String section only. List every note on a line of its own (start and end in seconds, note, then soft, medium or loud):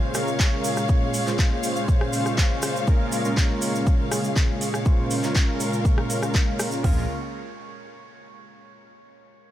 0.00 2.84 C#3 medium
0.00 6.80 G#3 medium
0.00 2.83 G#4 medium
0.00 6.80 F5 medium
2.87 6.80 C#3 medium
2.87 4.84 A#3 medium
4.86 6.82 A#4 medium
6.84 7.07 C#3 medium
6.84 7.07 G#3 medium
6.84 7.07 A#3 medium
6.84 7.07 F4 medium